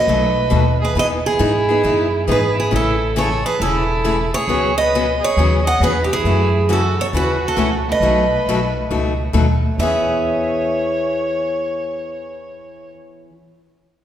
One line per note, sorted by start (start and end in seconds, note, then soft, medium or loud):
0.00 0.76 B4 medium
0.00 0.77 D#5 loud
0.07 0.50 B1 medium
0.07 0.30 B2 medium
0.07 0.30 F#3 medium
0.07 0.30 A3 medium
0.07 0.30 D#4 medium
0.07 0.30 F#4 medium
0.50 0.94 D#2 medium
0.50 0.62 B2 medium
0.50 0.62 F#3 medium
0.50 0.63 A3 medium
0.50 0.62 D#4 medium
0.50 0.63 F#4 medium
0.81 0.94 G#4 medium
0.81 0.97 B4 medium
0.95 1.38 E2 medium
0.95 1.17 E3 medium
0.95 1.18 B3 medium
0.95 1.18 D#4 medium
0.95 1.18 G#4 medium
0.95 1.08 B4 medium
0.99 1.06 D#5 loud
1.23 2.24 E4 medium
1.23 2.53 G#4 medium
1.39 1.82 G#2 medium
1.39 1.51 E3 medium
1.39 1.51 B3 medium
1.39 1.51 D#4 medium
1.39 1.51 G#4 loud
1.69 1.83 B3 soft
1.69 1.83 D#4 medium
1.69 1.83 G#4 medium
1.84 2.27 F#2 medium
1.84 2.05 E3 medium
1.84 2.06 B3 medium
1.84 2.06 D#4 medium
1.84 2.06 G#4 medium
2.27 2.71 G#2 medium
2.27 2.39 E3 medium
2.27 2.39 B3 medium
2.27 2.40 D#4 medium
2.27 2.54 G#4 medium
2.27 2.40 G#4 medium
2.31 2.56 B4 medium
2.54 2.70 E4 medium
2.60 2.73 G#4 medium
2.71 3.42 A1 medium
2.71 2.93 C#3 medium
2.71 2.93 E3 medium
2.71 2.94 A3 medium
2.71 2.93 C#4 medium
2.71 3.13 E4 medium
2.71 2.94 G#4 medium
2.76 3.15 A4 medium
3.16 3.28 C#3 medium
3.16 3.27 E3 medium
3.16 3.28 A3 medium
3.16 3.28 C#4 medium
3.16 3.28 G#4 medium
3.16 3.42 A4 medium
3.16 3.45 C#5 medium
3.46 3.60 G#4 medium
3.46 3.60 B4 medium
3.60 4.30 E1 medium
3.60 3.83 C#3 medium
3.60 3.83 E3 medium
3.60 3.83 A3 medium
3.60 3.83 C#4 medium
3.60 4.29 E4 medium
3.60 3.83 G#4 medium
3.60 4.29 A4 medium
4.04 4.16 C#3 medium
4.04 4.16 E3 medium
4.04 4.16 A3 medium
4.04 4.16 C#4 medium
4.04 4.16 G#4 medium
4.34 4.74 G#4 medium
4.34 4.74 C#5 medium
4.48 5.19 C#2 medium
4.48 4.70 C#3 medium
4.48 4.70 F#3 medium
4.48 4.70 B3 medium
4.48 4.71 C#4 medium
4.48 4.71 F#4 medium
4.78 5.19 B4 medium
4.78 5.23 D#5 medium
4.95 5.05 C#3 medium
4.95 5.05 F#3 medium
4.95 5.05 B3 medium
4.95 5.05 C#4 medium
4.95 5.06 F#4 medium
5.20 5.61 G#4 medium
5.24 5.67 C#5 loud
5.37 5.74 D#2 medium
5.37 5.59 C#3 medium
5.37 5.59 F#3 medium
5.37 5.59 B3 medium
5.37 5.59 C#4 medium
5.37 5.60 F#4 medium
5.65 5.79 D#5 medium
5.65 5.82 F#5 loud
5.80 6.18 E2 medium
5.80 5.93 C#3 medium
5.80 5.94 F#3 medium
5.80 5.93 B3 medium
5.80 5.94 C#4 medium
5.80 5.94 F#4 medium
5.80 6.00 G#4 medium
5.80 6.02 B4 medium
6.02 6.09 D#4 medium
6.02 6.11 G4 medium
6.10 6.66 E4 medium
6.10 6.73 G#4 medium
6.24 6.95 F#2 medium
6.24 6.47 C#3 medium
6.24 6.47 E3 medium
6.24 6.47 A3 medium
6.24 6.47 C#4 medium
6.24 6.48 F#4 medium
6.69 6.81 C#3 medium
6.69 6.81 E3 medium
6.69 6.81 A3 medium
6.69 6.81 C#4 medium
6.69 6.96 F#4 medium
6.69 6.81 F#4 medium
6.69 7.00 A4 medium
6.99 7.06 A4 medium
6.99 7.06 C#5 loud
7.13 7.51 D#2 medium
7.13 7.35 C#3 medium
7.13 7.36 E3 medium
7.13 7.36 A3 medium
7.13 7.36 C#4 medium
7.13 7.36 F#4 medium
7.13 7.42 F#4 medium
7.13 7.45 B4 medium
7.45 7.71 F#4 medium
7.45 7.73 A4 medium
7.56 7.95 C#2 medium
7.56 7.69 C#3 medium
7.56 7.69 E3 medium
7.56 7.69 A3 medium
7.56 7.69 C#4 medium
7.56 7.70 F#4 medium
7.88 9.32 B4 medium
7.88 9.33 D#5 medium
8.00 8.36 B1 medium
8.00 8.24 B2 medium
8.00 8.24 F#3 medium
8.00 8.24 A3 medium
8.00 8.24 D#4 medium
8.00 8.24 F#4 medium
8.47 8.84 B1 medium
8.47 8.59 B2 medium
8.47 8.59 F#3 medium
8.47 8.59 A3 medium
8.47 8.59 D#4 medium
8.47 8.59 F#4 medium
8.90 9.28 C#2 medium
8.90 9.12 B2 medium
8.90 9.12 F#3 medium
8.90 9.12 A3 medium
8.90 9.12 D#4 medium
8.90 9.13 F#4 medium
9.33 9.72 D#2 medium
9.33 9.45 B2 medium
9.33 9.46 F#3 medium
9.33 9.46 A3 medium
9.33 9.46 D#4 medium
9.33 9.46 F#4 medium
9.78 12.91 E2 medium
9.78 13.29 E3 medium
9.78 13.31 B3 medium
9.78 12.91 C#5 medium
9.78 12.93 E5 medium
9.83 13.33 C#4 medium
9.83 13.33 G#4 medium